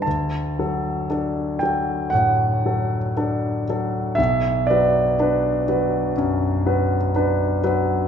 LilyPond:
\new Staff \with { instrumentName = "Grand piano" } { \time 4/4 \key d \major \tempo 4 = 60 << { a''4. g''8 fis''2 | e''8 d''2. r8 | } \\ { d,8 <fis a'>8 <d' a'>8 <fis a'>8 a,8 <fis a'>8 <d' a'>8 <fis a'>8 | b,,8 <fis b'>8 <d' b'>8 <fis b'>8 fis,8 <fis b'>8 <d' b'>8 <fis b'>8 | } >> }